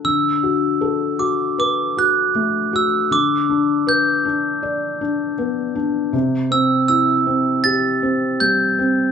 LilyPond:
<<
  \new Staff \with { instrumentName = "Glockenspiel" } { \time 4/4 \key d \mixolydian \tempo 4 = 79 e'''4. d'''8 d'''8 fis'''4 e'''8 | d'''4 g'''2~ g'''8 r8 | r8 e'''8 e'''4 a'''4 g'''4 | }
  \new Staff \with { instrumentName = "Felt piano" } { \time 4/4 \key d \mixolydian d8 fis'8 a'8 fis'8 b'8 fis'8 a8 fis'8 | d8 d'8 b'8 d'8 d''8 d'8 b8 d'8 | c8 c'8 e'8 c'8 g'8 c'8 g8 c'8 | }
>>